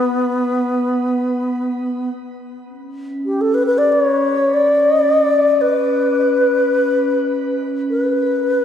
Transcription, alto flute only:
0.00 2.10 B3 medium
3.26 3.43 G4 medium
3.41 3.56 A4 medium
3.54 3.65 B4 medium
3.66 3.79 B4 medium
3.78 3.93 D5 medium
3.92 4.55 C#5 medium
4.54 5.13 D5 medium
5.13 5.24 D#5 medium
5.24 5.63 D5 medium
5.61 7.64 B4 medium
7.90 8.65 B4 medium

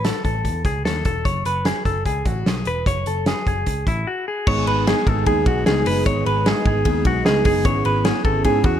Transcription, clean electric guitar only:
0.05 0.23 A4 medium
0.25 0.63 A4 medium
0.66 0.85 G#4 medium
0.85 1.05 A4 medium
1.06 1.26 A4 medium
1.25 1.46 C#5 medium
1.46 1.66 B4 medium
1.66 1.85 G#4 medium
1.85 2.06 A4 medium
2.06 2.27 G#4 medium
2.27 2.47 F#4 medium
2.47 2.67 G#4 medium
2.67 2.87 B4 medium
2.87 3.07 C#5 medium
3.07 3.27 A4 medium
3.28 3.46 G#4 medium
3.48 3.85 G#4 medium
3.88 4.07 E4 medium
4.07 4.27 F#4 medium
4.28 4.47 G#4 medium
4.48 4.67 C#5 medium
4.67 4.87 B4 medium
4.88 5.07 G#4 medium
5.07 5.27 A4 medium
5.27 5.47 G#4 medium
5.47 5.66 F#4 medium
5.66 5.86 G#4 medium
5.87 6.06 B4 medium
6.06 6.26 C#5 loud
6.27 6.46 B4 medium
6.47 6.66 G#4 medium
6.67 7.04 G#4 medium
7.07 7.26 F#4 medium
7.26 7.45 G#4 medium
7.46 7.66 G#4 medium
7.65 7.85 C#5 loud
7.86 8.05 B4 medium
8.05 8.25 G#4 medium
8.25 8.45 A4 loud
8.45 8.65 G#4 medium
8.66 8.80 F#4 medium

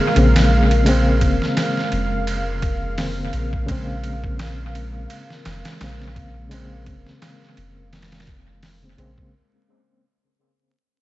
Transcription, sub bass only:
0.16 1.23 A#1 medium
1.22 1.39 F1 medium
1.92 3.30 F1 medium
3.34 3.65 A#1 medium
3.69 5.07 A#1 medium
5.46 5.63 F1 medium
5.81 6.88 A#1 medium
6.87 7.04 F1 medium
7.58 8.95 F1 medium
8.98 9.15 A#1 medium

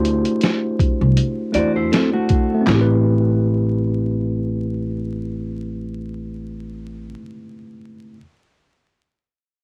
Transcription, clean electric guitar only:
1.55 1.75 F#4 medium
1.55 1.75 D5 medium
1.76 1.91 E4 medium
1.76 1.91 C5 medium
1.92 2.13 C4 medium
1.92 2.12 A4 medium
2.13 2.64 A3 medium
2.13 2.64 F#4 medium

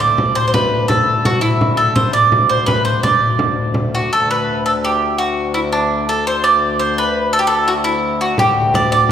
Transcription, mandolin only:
0.00 0.35 D5 medium
0.35 0.46 C5 medium
0.48 0.53 C5 medium
0.54 0.87 B4 medium
0.88 1.26 A4 medium
1.25 1.41 F#4 medium
1.41 1.79 E4 medium
1.77 1.95 A4 medium
1.96 2.13 C5 medium
2.13 2.49 D5 medium
2.49 2.66 C5 medium
2.66 2.84 B4 medium
2.85 3.02 C5 medium
3.03 3.71 D5 medium
3.95 4.11 F#4 medium
4.13 4.28 A4 medium
4.31 4.63 B4 medium
4.66 4.71 A4 medium
4.84 5.17 G4 medium
5.18 5.51 F#4 medium
5.54 5.59 E4 medium
5.73 6.05 D4 medium
6.09 6.25 A4 medium
6.27 6.43 C5 medium
6.44 6.79 D5 medium
6.79 6.95 C5 medium
6.98 7.33 B4 medium
7.33 7.39 A4 medium
7.39 7.46 G4 medium
7.47 7.69 A4 medium
7.68 7.73 F#4 medium
7.84 8.21 E4 medium
8.21 8.39 F#4 medium
8.39 8.72 G4 medium
8.75 8.91 D5 medium
8.92 9.09 D5 medium

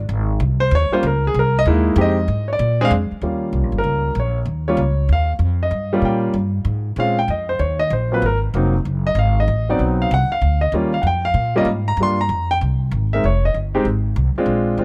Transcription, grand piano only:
0.60 0.72 C5 loud
0.75 0.93 C#5 loud
0.92 1.03 G3 medium
0.92 1.03 A#3 medium
0.92 1.03 C#4 medium
0.92 1.03 F4 medium
0.92 1.04 C5 medium
1.07 1.24 A#4 medium
1.27 1.36 G#4 loud
1.39 1.56 A#4 medium
1.59 1.64 D#5 loud
1.67 1.96 G#3 medium
1.67 1.98 A#3 medium
1.67 1.97 D#4 medium
1.67 1.98 E4 medium
1.97 2.15 G#3 medium
1.97 2.15 C4 medium
1.97 2.16 D#4 medium
1.97 2.15 G4 medium
2.01 2.47 D#5 loud
2.53 2.80 D5 loud
2.81 2.90 G#3 medium
2.81 2.91 C4 medium
2.81 2.91 D4 medium
2.81 2.91 G#4 loud
2.81 2.90 F5 loud
3.23 4.10 G3 medium
3.23 4.10 A#3 soft
3.23 4.10 C#4 soft
3.23 4.10 F4 medium
3.78 4.16 A#4 medium
4.20 4.37 C#5 medium
4.68 4.78 G3 medium
4.68 4.78 A#3 medium
4.68 4.78 C#4 medium
4.68 4.78 F4 medium
4.68 5.07 C#5 medium
5.13 5.31 F5 medium
5.63 6.02 D#5 medium
5.93 6.33 G3 medium
5.93 6.33 A#3 medium
5.93 6.34 C#4 medium
5.93 6.34 F4 medium
6.05 6.17 G5 medium
6.98 7.16 G#3 medium
6.98 7.16 C4 medium
6.98 7.16 C#4 medium
6.98 7.16 F4 medium
6.98 7.18 F5 loud
7.19 7.29 G5 medium
7.30 7.49 D#5 medium
7.49 7.60 C5 medium
7.60 7.79 C#5 medium
7.79 7.91 D#5 loud
7.93 8.12 C5 medium
8.12 8.22 F#3 medium
8.12 8.22 A#3 medium
8.12 8.22 C4 medium
8.12 8.23 F4 medium
8.12 8.24 B4 medium
8.26 8.37 A#4 medium
8.55 8.73 F#3 medium
8.55 8.72 A#3 medium
8.55 8.73 C4 medium
8.55 8.73 D#4 medium
9.07 9.17 D#5 loud
9.19 9.37 F5 medium
9.40 9.68 D#5 medium
9.69 10.09 F#3 medium
9.69 10.09 B3 medium
9.69 10.09 C4 medium
9.69 10.09 D#4 medium
9.69 9.80 D5 medium
10.02 10.12 F5 medium
10.14 10.32 F#5 loud
10.32 10.60 F5 medium
10.61 10.73 D#5 medium
10.74 10.91 G3 medium
10.74 10.91 A#3 medium
10.74 10.92 C#4 medium
10.74 10.92 F4 medium
10.94 11.05 F5 medium
11.02 11.04 F#5 medium
11.07 11.25 G5 loud
11.25 11.54 F5 loud
11.56 11.66 G3 medium
11.56 11.66 A#3 medium
11.56 11.66 C#4 medium
11.56 11.66 F4 medium
11.56 11.68 D#5 loud
11.88 11.98 A#5 loud
12.00 12.17 G3 medium
12.00 12.17 A#3 medium
12.00 12.17 D4 medium
12.00 12.17 F4 medium
12.00 12.20 C6 loud
12.21 12.48 A#5 loud
12.51 12.57 G5 loud
13.13 13.23 G#3 medium
13.13 13.23 C4 soft
13.13 13.23 D#4 medium
13.13 13.23 A#4 medium
13.13 13.23 E5 medium
13.25 13.43 C#5 medium
13.45 13.55 D#5 medium
13.74 13.84 G#3 medium
13.74 13.85 C4 medium
13.74 13.85 D#4 medium
13.74 13.84 G4 medium
14.38 14.77 G#3 medium
14.38 14.77 C4 medium
14.38 14.77 D4 medium
14.38 14.77 F4 medium
14.79 14.85 G#3 medium
14.79 14.85 C4 medium
14.79 14.85 D4 medium
14.79 14.85 F4 medium

